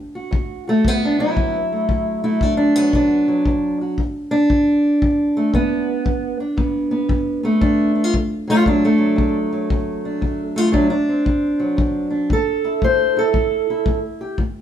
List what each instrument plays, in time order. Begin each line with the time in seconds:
Already playing: steel-string acoustic guitar D2
0.15 steel-string acoustic guitar F#4
0.31 steel-string acoustic guitar D2, kick
0.68 steel-string acoustic guitar A3 F#4
0.85 steel-string acoustic guitar D2 B3, kick
1.05 steel-string acoustic guitar D4
1.19 steel-string acoustic guitar F#3 E4
1.35 steel-string acoustic guitar D2, kick
1.72 steel-string acoustic guitar A3
1.89 steel-string acoustic guitar D2, kick
2.24 steel-string acoustic guitar A3 E4
2.41 steel-string acoustic guitar D2 D4, kick
2.57 steel-string acoustic guitar D4
2.76 steel-string acoustic guitar F#3 B3
2.93 steel-string acoustic guitar D2 D4, kick
3.28 steel-string acoustic guitar F#3
3.46 steel-string acoustic guitar D2, kick
3.81 steel-string acoustic guitar F#4
3.98 steel-string acoustic guitar G2, kick
4.31 steel-string acoustic guitar D4
4.50 steel-string acoustic guitar G2, kick
5.02 steel-string acoustic guitar G2, kick
5.37 steel-string acoustic guitar A3
5.53 steel-string acoustic guitar G2 B3, kick
6.05 steel-string acoustic guitar G2, kick
6.40 steel-string acoustic guitar D4
6.57 steel-string acoustic guitar G2 B3, kick
6.91 steel-string acoustic guitar B3
7.09 steel-string acoustic guitar G2, kick
7.43 steel-string acoustic guitar A3 B3
7.61 steel-string acoustic guitar G2 D4, kick
7.95 steel-string acoustic guitar D4
8.04 steel-string acoustic guitar F4
8.14 steel-string acoustic guitar D2, kick
8.47 steel-string acoustic guitar F#3 A3 F4
8.66 steel-string acoustic guitar D2 F#3 D4, kick
8.85 steel-string acoustic guitar A3
8.98 steel-string acoustic guitar F#3
9.16 steel-string acoustic guitar D2, kick
9.53 steel-string acoustic guitar F#3
9.70 steel-string acoustic guitar D2, kick
10.05 steel-string acoustic guitar D4
10.21 steel-string acoustic guitar D2, kick
10.56 steel-string acoustic guitar A3 F4
10.72 steel-string acoustic guitar D2 F#3 D4, kick
10.90 steel-string acoustic guitar D4
11.09 steel-string acoustic guitar C4
11.25 steel-string acoustic guitar D2, kick
11.60 steel-string acoustic guitar F#3
11.77 steel-string acoustic guitar D2, kick
12.10 steel-string acoustic guitar D4
12.30 steel-string acoustic guitar A2 A4, kick
12.64 steel-string acoustic guitar E4
12.82 steel-string acoustic guitar A2 C5, kick
13.17 steel-string acoustic guitar E4 A4
13.33 steel-string acoustic guitar A2, kick
13.70 steel-string acoustic guitar E4
13.86 steel-string acoustic guitar A2, kick
14.21 steel-string acoustic guitar G4
14.38 steel-string acoustic guitar A2, kick